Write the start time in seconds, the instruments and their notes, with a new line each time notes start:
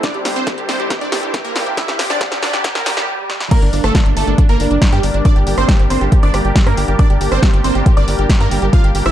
Already playing: supersaw synth C4 C5, riser
0.03 supersaw synth G3 D4 E4, synth pluck D4 D5, kick, snare, closed hi-hat
0.14 analog synth bass C2, synth pluck G4, closed hi-hat
0.25 analog synth bass C2, synth pluck G4, snare, open hi-hat
0.36 analog synth bass C2, synth pluck C4 C5, closed hi-hat
0.47 synth pluck G4, kick, snare, closed hi-hat
0.58 analog synth bass C2, synth pluck G4, closed hi-hat
0.69 analog synth bass C2, synth pluck C4 C5, snare, open hi-hat
0.79 analog synth bass C2, synth pluck G4, closed hi-hat
0.90 synth pluck G4, kick, snare, closed hi-hat
1.01 analog synth bass C2, synth pluck D4 D5, closed hi-hat
1.12 analog synth bass C2, synth pluck G4, snare, open hi-hat
1.23 analog synth bass C2, synth pluck G4, closed hi-hat
1.34 synth pluck G4, kick, snare, closed hi-hat
1.44 analog synth bass G1, synth pluck A#3 A#4, closed hi-hat
1.55 analog synth bass C2, synth pluck G4, snare, open hi-hat
1.66 analog synth bass C2, synth pluck G4, closed hi-hat
1.77 synth pluck E4 E5, kick, snare, closed hi-hat
1.88 analog synth bass C2, synth pluck G4, snare, closed hi-hat
1.99 analog synth bass C2, synth pluck G4, snare, open hi-hat
2.10 analog synth bass C2, synth pluck D4 D5, snare, closed hi-hat
2.21 synth pluck G4, kick, snare, closed hi-hat
2.31 analog synth bass C2, synth pluck G4, snare, closed hi-hat
2.42 analog synth bass C2, synth pluck D4 D5, snare, open hi-hat
2.53 analog synth bass C2, synth pluck G4, snare, closed hi-hat
2.64 synth pluck G4, kick, snare, closed hi-hat, swell
2.75 synth pluck A#3 A#4, snare, closed hi-hat
2.86 analog synth bass C2, synth pluck G4, snare, open hi-hat
2.97 analog synth bass C2, synth pluck G4, snare, closed hi-hat
3.30 snare
3.40 snare
3.51 supersaw synth G3 A#3 D4 A#4 D5, synth pluck A#3 A#4, grand piano A#5, kick, closed hi-hat, crash
3.62 analog synth bass G1, synth pluck D4, grand piano D5, closed hi-hat
3.73 analog synth bass G1, synth pluck D4, grand piano D5, open hi-hat
3.84 analog synth bass G1, synth pluck A3 A4, grand piano A5, cross-stick, closed hi-hat
3.95 synth pluck D4, grand piano D5, kick, snare, closed hi-hat
4.06 analog synth bass G1, synth pluck D4, grand piano D5, closed hi-hat
4.16 analog synth bass G1, synth pluck A3 A4, grand piano A5, open hi-hat
4.27 analog synth bass G1, synth pluck D4, grand piano D5, closed hi-hat
4.38 synth pluck D4, kick, closed hi-hat
4.49 analog synth bass G1, synth pluck A#3 A#4, grand piano A#5, closed hi-hat
4.60 analog synth bass G1, synth pluck D4, grand piano D5, open hi-hat
4.71 analog synth bass G1, synth pluck D4, grand piano D5, closed hi-hat
4.82 synth pluck D4, kick, snare, closed hi-hat
4.92 analog synth bass G2, synth pluck G3 G4, grand piano G5, closed hi-hat
5.03 analog synth bass G1, synth pluck D4, grand piano D5, open hi-hat
5.14 analog synth bass G1, synth pluck D4, grand piano D5, closed hi-hat
5.25 synth pluck D4 D5, grand piano D6, kick, closed hi-hat
5.36 analog synth bass G1, synth pluck G4, grand piano G5, closed hi-hat
5.47 analog synth bass G1, synth pluck G4, grand piano G5, open hi-hat
5.58 analog synth bass G1, synth pluck C4 C5, grand piano C6, cross-stick
5.68 synth pluck G4, grand piano G5, kick, snare, closed hi-hat
5.79 analog synth bass G1, synth pluck G4, grand piano G5, closed hi-hat
5.90 analog synth bass G1, synth pluck C4 C5, grand piano C6, open hi-hat
6.01 analog synth bass G1, synth pluck G4, grand piano G5
6.12 synth pluck G4, grand piano G5, kick, closed hi-hat
6.23 analog synth bass G1, synth pluck D4 D5, grand piano D6, closed hi-hat
6.34 analog synth bass G1, synth pluck G4, grand piano G5, cross-stick, open hi-hat
6.45 analog synth bass G1, synth pluck G4, grand piano G5, closed hi-hat
6.56 synth pluck G4, kick, snare, closed hi-hat
6.66 analog synth bass G2, synth pluck A#3 A#4, grand piano A#5, cross-stick, closed hi-hat
6.77 analog synth bass G1, synth pluck G4, grand piano G5, open hi-hat
6.88 analog synth bass G1, synth pluck G4, grand piano G5, closed hi-hat
6.99 synth pluck D4 D5, grand piano D6, kick, closed hi-hat
7.10 analog synth bass G1, synth pluck G4, grand piano G5, closed hi-hat
7.21 analog synth bass G1, synth pluck G4, grand piano G5, open hi-hat
7.32 analog synth bass G1, synth pluck C4 C5, grand piano C6, cross-stick
7.43 synth pluck G4, grand piano G5, kick, snare, closed hi-hat
7.53 analog synth bass G1, synth pluck G4, grand piano G5, closed hi-hat
7.64 analog synth bass G1, synth pluck C4 C5, grand piano C6, open hi-hat
7.75 analog synth bass G1, synth pluck G4, grand piano G5, closed hi-hat
7.86 synth pluck G4, grand piano G5, kick, closed hi-hat
7.97 analog synth bass G1, synth pluck D4 D5, grand piano D6, closed hi-hat
8.08 analog synth bass G1, synth pluck G4, grand piano G5, open hi-hat
8.19 analog synth bass G1, synth pluck G4, grand piano G5, closed hi-hat
8.29 synth pluck G4, kick, snare, closed hi-hat
8.40 analog synth bass G2, synth pluck A#3 A#4, grand piano A#5, closed hi-hat
8.51 analog synth bass G1, synth pluck G4, grand piano G5, open hi-hat
8.62 analog synth bass G1, synth pluck G4, grand piano G5, closed hi-hat
8.73 synth pluck F4 F5, grand piano F6, kick, closed hi-hat
8.84 analog synth bass G1, synth pluck G4, grand piano G5, closed hi-hat
8.95 analog synth bass G1, synth pluck G4, grand piano G5, open hi-hat
9.06 analog synth bass G1, synth pluck E4 E5, grand piano E6, cross-stick, closed hi-hat